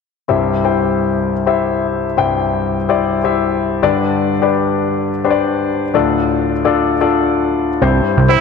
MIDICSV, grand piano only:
0, 0, Header, 1, 2, 480
1, 0, Start_track
1, 0, Key_signature, 0, "major"
1, 0, Tempo, 470588
1, 301, Time_signature, 4, 2, 24, 8
1, 8573, End_track
2, 0, Start_track
2, 0, Title_t, "Grand piano"
2, 0, Program_c, 0, 0
2, 288, Note_on_c, 0, 64, 58
2, 293, Note_on_c, 0, 67, 56
2, 295, Note_on_c, 0, 36, 49
2, 295, Note_on_c, 0, 72, 54
2, 295, Note_on_c, 0, 76, 64
2, 296, Note_on_c, 0, 43, 51
2, 521, Control_c, 0, 64, 127
2, 591, Note_off_c, 0, 64, 0
2, 594, Note_off_c, 0, 67, 0
2, 595, Note_off_c, 0, 72, 0
2, 595, Note_off_c, 0, 76, 0
2, 652, Note_on_c, 0, 64, 60
2, 657, Note_on_c, 0, 67, 55
2, 661, Note_on_c, 0, 72, 51
2, 661, Note_on_c, 0, 79, 58
2, 1350, Note_off_c, 0, 64, 0
2, 1352, Note_off_c, 0, 67, 0
2, 1354, Note_off_c, 0, 72, 0
2, 1354, Note_off_c, 0, 79, 0
2, 1495, Note_on_c, 0, 64, 62
2, 1495, Note_on_c, 0, 72, 56
2, 1497, Note_on_c, 0, 67, 58
2, 1502, Note_on_c, 0, 76, 67
2, 2092, Note_off_c, 0, 64, 0
2, 2092, Note_off_c, 0, 72, 0
2, 2093, Note_off_c, 0, 67, 0
2, 2095, Note_off_c, 0, 76, 0
2, 2178, Note_off_c, 0, 36, 0
2, 2178, Note_off_c, 0, 43, 0
2, 2214, Note_on_c, 0, 64, 60
2, 2216, Note_on_c, 0, 43, 51
2, 2217, Note_on_c, 0, 36, 48
2, 2217, Note_on_c, 0, 67, 53
2, 2222, Note_on_c, 0, 72, 56
2, 2222, Note_on_c, 0, 79, 67
2, 2812, Note_off_c, 0, 64, 0
2, 2813, Note_off_c, 0, 67, 0
2, 2816, Note_off_c, 0, 72, 0
2, 2816, Note_off_c, 0, 79, 0
2, 2945, Note_on_c, 0, 64, 66
2, 2946, Note_on_c, 0, 72, 57
2, 2947, Note_on_c, 0, 67, 57
2, 2955, Note_on_c, 0, 74, 72
2, 3240, Note_off_c, 0, 64, 0
2, 3241, Note_off_c, 0, 67, 0
2, 3241, Note_off_c, 0, 72, 0
2, 3245, Note_off_c, 0, 74, 0
2, 3304, Note_on_c, 0, 64, 62
2, 3305, Note_on_c, 0, 72, 57
2, 3307, Note_on_c, 0, 67, 59
2, 3313, Note_on_c, 0, 76, 70
2, 3858, Note_off_c, 0, 43, 0
2, 3859, Note_off_c, 0, 36, 0
2, 3888, Note_off_c, 0, 67, 0
2, 3903, Note_off_c, 0, 64, 0
2, 3904, Note_off_c, 0, 72, 0
2, 3904, Note_on_c, 0, 62, 72
2, 3904, Note_on_c, 0, 67, 62
2, 3905, Note_on_c, 0, 43, 55
2, 3907, Note_off_c, 0, 76, 0
2, 3907, Note_on_c, 0, 50, 60
2, 3907, Note_on_c, 0, 74, 83
2, 3912, Note_on_c, 0, 71, 64
2, 3915, Control_c, 0, 64, 0
2, 4088, Control_c, 0, 64, 127
2, 4398, Note_off_c, 0, 62, 0
2, 4398, Note_off_c, 0, 67, 0
2, 4400, Note_off_c, 0, 74, 0
2, 4402, Note_off_c, 0, 71, 0
2, 4504, Note_on_c, 0, 67, 58
2, 4507, Note_on_c, 0, 62, 64
2, 4511, Note_on_c, 0, 71, 61
2, 4513, Note_on_c, 0, 74, 63
2, 5196, Note_off_c, 0, 67, 0
2, 5197, Note_off_c, 0, 62, 0
2, 5200, Note_off_c, 0, 71, 0
2, 5201, Note_off_c, 0, 74, 0
2, 5349, Note_on_c, 0, 72, 56
2, 5350, Note_on_c, 0, 67, 64
2, 5351, Note_on_c, 0, 62, 72
2, 5354, Note_on_c, 0, 71, 63
2, 5403, Note_off_c, 0, 72, 0
2, 5411, Note_on_c, 0, 74, 75
2, 5783, Note_off_c, 0, 43, 0
2, 5784, Note_off_c, 0, 50, 0
2, 5940, Note_off_c, 0, 62, 0
2, 5940, Note_off_c, 0, 67, 0
2, 5942, Note_off_c, 0, 71, 0
2, 5970, Note_off_c, 0, 74, 0
2, 6058, Note_on_c, 0, 62, 65
2, 6060, Note_on_c, 0, 45, 57
2, 6063, Note_on_c, 0, 38, 55
2, 6064, Note_on_c, 0, 65, 61
2, 6066, Note_on_c, 0, 74, 74
2, 6068, Note_on_c, 0, 69, 59
2, 6073, Control_c, 0, 64, 0
2, 6282, Control_c, 0, 64, 127
2, 6654, Note_off_c, 0, 62, 0
2, 6657, Note_off_c, 0, 65, 0
2, 6658, Note_off_c, 0, 74, 0
2, 6659, Note_off_c, 0, 69, 0
2, 6779, Note_on_c, 0, 62, 66
2, 6780, Note_on_c, 0, 65, 65
2, 6784, Note_on_c, 0, 69, 65
2, 6785, Note_on_c, 0, 74, 71
2, 7078, Note_off_c, 0, 62, 0
2, 7078, Note_off_c, 0, 65, 0
2, 7080, Note_off_c, 0, 69, 0
2, 7081, Note_off_c, 0, 74, 0
2, 7147, Note_on_c, 0, 62, 69
2, 7149, Note_on_c, 0, 65, 60
2, 7151, Note_on_c, 0, 69, 65
2, 7153, Note_on_c, 0, 74, 77
2, 7837, Note_off_c, 0, 62, 0
2, 7839, Note_off_c, 0, 65, 0
2, 7839, Note_off_c, 0, 69, 0
2, 7840, Note_off_c, 0, 74, 0
2, 7940, Note_off_c, 0, 45, 0
2, 7942, Note_off_c, 0, 38, 0
2, 7974, Note_on_c, 0, 43, 58
2, 7975, Note_on_c, 0, 60, 64
2, 7976, Note_on_c, 0, 67, 63
2, 7978, Note_on_c, 0, 64, 68
2, 7978, Note_on_c, 0, 72, 75
2, 7996, Control_c, 0, 64, 0
2, 8169, Control_c, 0, 64, 127
2, 8374, Note_off_c, 0, 60, 0
2, 8375, Note_off_c, 0, 67, 0
2, 8376, Note_off_c, 0, 64, 0
2, 8376, Note_off_c, 0, 72, 0
2, 8458, Note_on_c, 0, 60, 62
2, 8459, Note_on_c, 0, 64, 58
2, 8464, Note_on_c, 0, 72, 68
2, 8465, Note_on_c, 0, 67, 56
2, 8573, Note_off_c, 0, 43, 0
2, 8573, Note_off_c, 0, 60, 0
2, 8573, Note_off_c, 0, 64, 0
2, 8573, Note_off_c, 0, 67, 0
2, 8573, Note_off_c, 0, 72, 0
2, 8573, End_track
0, 0, End_of_file